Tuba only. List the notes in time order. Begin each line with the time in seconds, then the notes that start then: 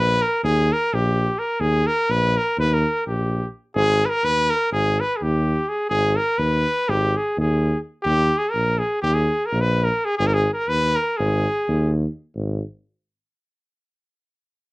Already playing: A#1
0.44 D#2
0.93 A#1
1.60 D#2
2.09 A#1
2.58 D#2
3.06 A#1
3.75 G#1
4.23 D#2
4.72 G#1
5.22 D#2
5.90 G#1
6.38 D#2
6.88 G#1
7.37 D#2
8.05 D#2
8.54 A#1
9.03 D#2
9.52 A#1
10.20 G#1
10.68 D#2
11.19 G#1
11.68 D#2
12.35 G#1